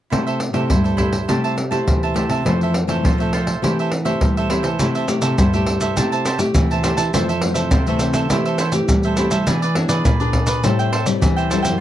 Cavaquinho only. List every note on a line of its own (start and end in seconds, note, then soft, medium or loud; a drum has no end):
0.10 0.25 E4 soft
0.10 0.25 A4 soft
0.10 0.26 C5 soft
0.10 0.25 E5 soft
0.27 0.40 A4 soft
0.27 0.40 C5 medium
0.27 0.40 E5 medium
0.41 muted cavaquinho stroke soft
0.54 0.69 A4 soft
0.54 0.69 C5 soft
0.54 0.69 E5 medium
0.70 0.84 E4 soft
0.70 0.84 A4 soft
0.70 0.84 C5 soft
0.70 0.83 E5 soft
0.84 0.97 A4 soft
0.84 0.97 C5 soft
0.84 0.98 E5 soft
0.97 1.26 E4 medium
0.97 1.27 A4 medium
0.97 1.27 C5 medium
0.97 1.27 E5 medium
1.28 1.42 G4 soft
1.28 1.42 C5 soft
1.28 1.42 E5 soft
1.28 1.43 A5 soft
1.44 1.56 C5 soft
1.44 1.56 E5 soft
1.44 1.56 A5 medium
1.57 muted cavaquinho stroke soft
1.71 2.00 C5 soft
1.71 2.00 E5 soft
1.71 2.00 A5 medium
2.03 2.16 C5 soft
2.03 2.16 E5 soft
2.03 2.16 A5 medium
2.16 2.30 G4 soft
2.16 2.30 C5 soft
2.16 2.29 E5 soft
2.16 2.28 A5 soft
2.30 2.44 C5 soft
2.30 2.44 E5 medium
2.30 2.44 A5 medium
2.47 2.60 F4 soft
2.47 2.60 A4 soft
2.47 2.60 C5 soft
2.47 2.60 E5 soft
2.63 2.75 A4 soft
2.63 2.76 C5 medium
2.63 2.75 E5 medium
2.76 muted cavaquinho stroke soft
2.90 3.04 A4 soft
2.90 3.03 C5 medium
2.90 3.03 E5 medium
3.05 3.18 F4 soft
3.05 3.19 A4 soft
3.05 3.19 C5 soft
3.05 3.19 E5 soft
3.20 3.33 A4 soft
3.20 3.33 C5 soft
3.20 3.33 E5 medium
3.34 3.62 F4 medium
3.34 3.62 A4 medium
3.34 3.62 C5 medium
3.34 3.62 E5 medium
3.64 3.77 E4 soft
3.64 3.77 A4 soft
3.64 3.77 C5 soft
3.64 3.78 E5 soft
3.80 3.91 A4 medium
3.80 3.91 C5 medium
3.80 3.92 E5 medium
3.92 muted cavaquinho stroke soft
4.05 4.35 A4 soft
4.05 4.34 C5 medium
4.05 4.34 E5 medium
4.37 4.49 A4 medium
4.37 4.50 C5 medium
4.37 4.50 E5 medium
4.50 4.64 E4 soft
4.50 4.64 A4 soft
4.50 4.63 C5 soft
4.50 4.62 E5 soft
4.63 4.78 A4 medium
4.63 4.78 C5 medium
4.63 4.77 E5 medium
4.80 4.93 E4 soft
4.80 4.94 A4 soft
4.80 4.94 C5 soft
4.80 4.94 E5 soft
4.95 5.08 A4 soft
4.95 5.08 C5 medium
4.95 5.08 E5 medium
5.09 muted cavaquinho stroke soft
5.22 5.37 A4 soft
5.22 5.36 C5 medium
5.22 5.36 E5 medium
5.39 5.52 E4 soft
5.39 5.52 A4 soft
5.39 5.52 C5 medium
5.39 5.53 E5 soft
5.54 5.82 A4 soft
5.54 5.80 C5 soft
5.54 5.80 E5 medium
5.81 5.96 A4 medium
5.81 5.95 C5 medium
5.81 5.95 E5 medium
5.96 6.10 G4 soft
5.96 6.10 C5 soft
5.96 6.10 E5 soft
5.96 6.11 A5 soft
6.12 6.25 C5 soft
6.12 6.25 E5 medium
6.12 6.25 A5 medium
6.26 6.38 G4 medium
6.26 6.39 C5 medium
6.26 6.39 E5 medium
6.26 6.39 A5 medium
6.40 muted cavaquinho stroke soft
6.71 6.83 C5 soft
6.71 6.84 E5 medium
6.71 6.84 A5 medium
6.84 6.97 G4 soft
6.84 6.97 C5 soft
6.84 6.97 E5 soft
6.84 6.96 A5 soft
6.97 7.12 C5 soft
6.97 7.12 E5 soft
6.97 7.11 A5 medium
7.14 7.27 F4 soft
7.14 7.27 A4 soft
7.14 7.27 C5 medium
7.14 7.28 E5 medium
7.29 7.41 A4 soft
7.29 7.41 C5 medium
7.29 7.41 E5 medium
7.42 muted cavaquinho stroke soft
7.54 7.70 A4 medium
7.54 7.70 C5 medium
7.54 7.69 E5 medium
7.72 7.85 F4 soft
7.72 7.86 A4 soft
7.72 7.86 C5 soft
7.72 7.86 E5 soft
7.88 8.15 A4 medium
7.88 8.14 C5 medium
7.88 8.13 E5 medium
8.14 8.29 A4 soft
8.14 8.29 C5 medium
8.14 8.28 E5 medium
8.31 8.44 E4 soft
8.31 8.44 A4 soft
8.31 8.45 C5 soft
8.31 8.44 E5 soft
8.46 8.59 A4 soft
8.46 8.59 C5 medium
8.46 8.59 E5 medium
8.59 8.73 E4 medium
8.59 8.73 A4 medium
8.59 8.73 C5 medium
8.59 8.73 E5 medium
8.74 muted cavaquinho stroke soft
9.05 9.17 A4 medium
9.05 9.18 C5 medium
9.05 9.17 E5 medium
9.18 9.31 E4 soft
9.18 9.32 A4 soft
9.18 9.31 C5 soft
9.18 9.30 E5 soft
9.31 9.46 A4 soft
9.31 9.46 C5 medium
9.31 9.45 E5 medium
9.47 9.60 E4 soft
9.47 9.61 G#4 soft
9.47 9.61 B4 soft
9.47 9.61 D5 soft
9.62 9.75 G#4 medium
9.62 9.75 B4 medium
9.62 9.75 D5 medium
9.76 muted cavaquinho stroke soft
9.89 10.04 G#4 medium
9.89 10.04 B4 medium
9.89 10.03 D5 medium
10.05 10.19 E4 soft
10.05 10.19 G#4 soft
10.05 10.20 B4 soft
10.05 10.19 D5 soft
10.20 10.48 G#4 soft
10.20 10.47 B4 medium
10.20 10.46 D5 medium
10.47 10.63 G#4 medium
10.47 10.62 B4 medium
10.47 10.62 D5 medium
10.64 10.77 A4 soft
10.64 10.78 C5 soft
10.64 10.78 E5 soft
10.64 10.78 G5 soft
10.79 10.91 C5 medium
10.79 10.92 E5 medium
10.79 10.92 G5 medium
10.92 11.05 A4 medium
10.92 11.05 C5 medium
10.92 11.06 E5 medium
10.92 11.06 G5 medium
11.06 muted cavaquinho stroke soft
11.36 11.50 C5 medium
11.36 11.50 E5 medium
11.36 11.50 G5 medium
11.50 11.64 A4 soft
11.50 11.63 C5 soft
11.50 11.62 E5 soft
11.50 11.61 G5 soft
11.62 11.78 C5 soft
11.62 11.78 E5 medium
11.62 11.78 G5 medium